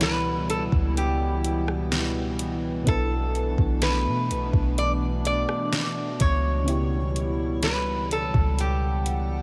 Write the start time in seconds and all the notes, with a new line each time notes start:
Already playing: C#2 B2 C#3 E3 G3 B3 E4 G4 C#5
0.01 B4, snare, closed hi-hat
0.50 A4, closed hi-hat
0.72 C#2, kick
0.97 G4, closed hi-hat
1.44 closed hi-hat
1.68 cross-stick
1.92 snare, closed hi-hat
2.39 closed hi-hat
2.83 B2 B3 D4, kick, closed hi-hat
2.87 B1 A3 D4 E4 A4 B4
3.35 closed hi-hat
3.58 B1, kick
3.82 B4, snare, closed hi-hat
4.07 B2
4.30 B1, closed hi-hat
4.53 B1, kick
4.78 D5, closed hi-hat
5.25 D5, closed hi-hat
5.49 cross-stick
5.73 snare, closed hi-hat
6.20 C#2 C#5, kick, closed hi-hat
6.64 C#3 G3 B3 E4, closed hi-hat
6.68 E4 G4 C#5
7.16 closed hi-hat
7.63 B4, snare, closed hi-hat
8.11 A4, closed hi-hat
8.34 C#2, kick
8.59 G4 F#5, closed hi-hat
9.06 closed hi-hat